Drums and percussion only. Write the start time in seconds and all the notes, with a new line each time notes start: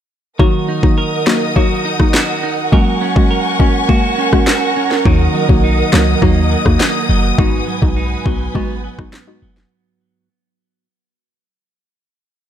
0.39 kick
0.83 kick
1.27 snare, clap
1.56 kick
2.00 kick, cross-stick
2.14 snare, clap
2.72 kick
3.16 kick
3.60 kick
3.89 kick
4.33 kick, cross-stick
4.47 snare, clap
4.91 snare
5.06 kick
5.49 kick
5.93 snare, clap
6.22 kick
6.66 kick, cross-stick
6.80 snare, clap
7.39 kick
7.82 kick
8.26 kick
8.55 kick
8.99 kick, cross-stick
9.13 snare, clap
9.57 snare